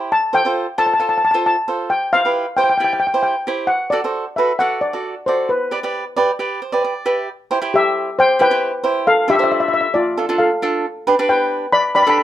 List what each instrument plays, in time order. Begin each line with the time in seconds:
Already playing: cavaquinho E4 G4 C5, steel pan B5
0.12 steel pan A5
0.33 cavaquinho F4 A4 C5, steel pan G5
0.45 cavaquinho F4 A4 C5
0.78 cavaquinho F4 A4 C5, steel pan A5
0.86 steel pan A5
0.94 steel pan A5
0.99 cavaquinho F4 A4 C5, steel pan A5
1.09 steel pan A5
1.18 steel pan A5
1.25 steel pan A5
1.31 cavaquinho F4 A4 C5, steel pan A5
1.46 steel pan A5
1.68 cavaquinho F4 A4 C5
1.90 steel pan G5
2.13 cavaquinho E4 G4 C5, steel pan F5
2.25 cavaquinho E4 G4 B4
2.57 cavaquinho E4 G4 C5, steel pan G5
2.64 steel pan G5
2.70 steel pan G5
2.78 cavaquinho E4 G4 D5, steel pan G5
2.84 steel pan G5
2.93 steel pan G5
3.00 steel pan G5
3.07 steel pan G5
3.14 cavaquinho E4 G4 C5
3.23 steel pan G5
3.47 cavaquinho E4 G4 C5
3.67 steel pan F#5
3.90 cavaquinho F#4 A4 D5, steel pan D5
4.04 cavaquinho F#4 A4 C5
4.36 cavaquinho F#4 A4 B4, steel pan E5
4.59 cavaquinho F#4 A4 D5, steel pan F#5
4.81 steel pan D5
4.93 cavaquinho F#4 A4 D5
5.26 cavaquinho F#4 A4 D5, steel pan C5
5.49 steel pan B4
5.71 cavaquinho G4 B4 D5
5.83 cavaquinho G4 B4 D5
6.17 cavaquinho G4 B4 D5
6.39 cavaquinho G4 B4 D5
6.62 cavaquinho C5
6.72 cavaquinho G4 B4 D5
6.84 cavaquinho D5
7.06 cavaquinho G4 B4 D5 E5
7.51 cavaquinho E4 G4 C5
7.62 cavaquinho E4 G4 C5
7.74 steel pan G4 E5
8.19 steel pan C5 G5
8.39 cavaquinho E4 G4 C5, steel pan B4 G5
8.51 cavaquinho E4 G4 C5
8.84 cavaquinho E4 G4 C5
9.07 steel pan A4 F5
9.28 cavaquinho D4 F4 A4, steel pan G4 E5
9.36 cavaquinho D4 C5, steel pan E5
9.40 cavaquinho F4, steel pan E5
9.52 steel pan E5
9.60 steel pan E5
9.68 steel pan E5
9.74 steel pan E5
9.81 steel pan E5
9.94 steel pan F4 D5
10.18 cavaquinho D4 F4 A4
10.29 cavaquinho D4 F4 A4
10.38 steel pan A4 F5
10.62 cavaquinho D4 F4 A4
11.07 cavaquinho D4 G4 B4
11.19 cavaquinho D4 G4 B4
11.29 steel pan B4 G5
11.72 steel pan D5 B5
11.95 cavaquinho D4 G4 B4, steel pan D5 B5
12.02 steel pan B5
12.07 cavaquinho D4 G4 A4, steel pan B5
12.18 steel pan B5